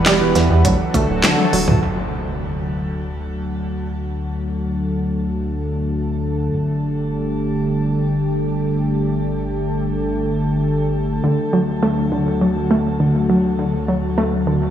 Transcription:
Already playing: analog synth pad E3 G3 B3 F#4 B4
0.06 analog synth bass E1, synth arpeggio sound G3, snare, clap, closed hi-hat
0.21 analog synth bass E1
0.35 analog synth bass E1, synth arpeggio sound E3, snare, closed hi-hat
0.50 analog synth bass E2
0.65 analog synth bass D2, analog synth pad D3 F#3 A3 F#4 A4, synth arpeggio sound F#3, kick, closed hi-hat
0.94 analog synth bass D2, synth arpeggio sound A3, kick, closed hi-hat
1.09 analog synth bass D1
1.24 analog synth bass D2, synth arpeggio sound D3, snare, clap, closed hi-hat, high tom
1.38 high tom
1.53 analog synth bass D1, synth arpeggio sound F#3, open hi-hat
1.68 analog synth bass D2, mid tom
1.82 analog synth bass D2, analog synth pad D3 F#3 A3 F#4 A4, impact
6.53 analog synth bass G1, analog synth pad G3 G4
11.24 analog synth bass D2, synth arpeggio sound D3, analog synth pad F#3 F#4
11.53 synth arpeggio sound F#3
11.83 synth arpeggio sound A3
12.12 synth arpeggio sound D3
12.41 synth arpeggio sound F#3
12.71 synth arpeggio sound A3
13.00 synth arpeggio sound D3
13.30 synth arpeggio sound F#3
13.59 synth arpeggio sound D3
13.88 synth arpeggio sound F#3
14.18 synth arpeggio sound A3
14.47 synth arpeggio sound D3

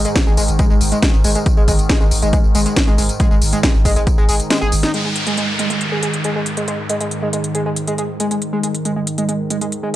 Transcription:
Already playing: ambient pad G#2 D#3
0.05 analog synth lead G#3, closed hi-hat, tambourine
0.16 kick, snare, closed hi-hat, tambourine
0.27 sub bass G#1, analog synth lead G#3, tambourine
0.37 sub bass G#1, analog synth lead G#3, open hi-hat, tambourine
0.48 sub bass G#1, closed hi-hat, tambourine
0.59 analog synth lead G#3, kick, closed hi-hat, tambourine
0.70 sub bass G#1, analog synth lead G#3, tambourine
0.81 sub bass G#1, open hi-hat, tambourine
0.92 analog synth lead G#3, closed hi-hat, tambourine
1.02 analog synth lead G#3, kick, snare, closed hi-hat, tambourine
1.14 sub bass G#1, tambourine
1.24 sub bass G#1, analog synth lead G#3, open hi-hat, tambourine
1.35 analog synth lead G#3, closed hi-hat, tambourine
1.46 kick, closed hi-hat, tambourine
1.57 sub bass G#1, analog synth lead G#3, tambourine
1.68 sub bass G#1, analog synth lead G#3, kick, open hi-hat, tambourine
1.79 closed hi-hat, tambourine
1.89 analog synth lead G#3, kick, snare, closed hi-hat, tambourine
2.00 sub bass G#1, analog synth lead G#3, tambourine
2.11 sub bass G#1, open hi-hat, tambourine
2.22 sub bass G#1, analog synth lead G#3, closed hi-hat, tambourine
2.33 analog synth lead G#3, kick, closed hi-hat, tambourine
2.44 sub bass G#1, tambourine
2.55 sub bass G#1, analog synth lead G#3, open hi-hat, tambourine
2.66 analog synth lead G#3, closed hi-hat, tambourine
2.76 kick, snare, closed hi-hat, tambourine
2.87 sub bass G#1, analog synth lead G#3, tambourine
2.98 sub bass G#1, analog synth lead G#3, open hi-hat, tambourine
3.09 closed hi-hat, tambourine
3.20 analog synth lead G#3, kick, closed hi-hat, tambourine
3.31 sub bass G#1, analog synth lead G#3, tambourine
3.42 sub bass G#1, open hi-hat, tambourine
3.53 analog synth lead G#3, closed hi-hat, tambourine
3.63 analog synth lead G#3, kick, snare, closed hi-hat, tambourine
3.74 sub bass G#1, tambourine
3.85 sub bass G#1, analog synth lead G#3, kick, open hi-hat, tambourine
3.96 sub bass G#1, analog synth lead G#3, closed hi-hat, tambourine
4.07 kick, closed hi-hat, tambourine
4.18 sub bass G#1, analog synth lead G#3, tambourine
4.29 sub bass G#1, analog synth lead G#3, open hi-hat, tambourine
4.40 closed hi-hat, tambourine
4.50 analog synth lead G#3, snare, closed hi-hat, tambourine
4.61 sub bass G#1, analog synth lead G#4, tambourine
4.72 sub bass G#1, open hi-hat, tambourine
4.83 analog synth lead D#4, snare, closed hi-hat, tambourine
4.94 ambient pad G#2 D#3, analog synth lead G#3, closed hi-hat, downlifter
5.05 analog synth lead G#3
5.16 closed hi-hat
5.27 analog synth lead G#3, closed hi-hat
5.37 analog synth lead G#3, closed hi-hat
5.59 analog synth lead G#3, closed hi-hat
5.70 analog synth lead G#3, closed hi-hat
5.81 closed hi-hat
5.92 analog synth lead G#3
6.03 analog synth lead G#3, closed hi-hat
6.14 closed hi-hat
6.24 analog synth lead G#3, closed hi-hat
6.35 analog synth lead G#3
6.46 closed hi-hat
6.57 analog synth lead G#3, closed hi-hat
6.68 analog synth lead G#3, closed hi-hat
6.89 analog synth lead G#3, closed hi-hat
7.01 analog synth lead G#3, closed hi-hat
7.11 closed hi-hat
7.22 analog synth lead G#3
7.33 analog synth lead G#3, closed hi-hat
7.44 closed hi-hat
7.55 analog synth lead G#3, closed hi-hat
7.66 analog synth lead G#3
7.76 closed hi-hat
7.88 analog synth lead G#3, closed hi-hat
7.98 analog synth lead G#3, closed hi-hat
8.20 analog synth lead G#3, closed hi-hat
8.31 analog synth lead G#3, closed hi-hat
8.42 closed hi-hat
8.53 analog synth lead G#3
8.63 analog synth lead G#3, closed hi-hat
8.75 closed hi-hat
8.85 analog synth lead G#3, closed hi-hat
8.96 analog synth lead G#3
9.07 closed hi-hat
9.18 analog synth lead G#3, closed hi-hat
9.29 analog synth lead G#3, closed hi-hat
9.50 analog synth lead G#3, closed hi-hat
9.61 analog synth lead G#3, closed hi-hat
9.72 closed hi-hat
9.83 analog synth lead G#3

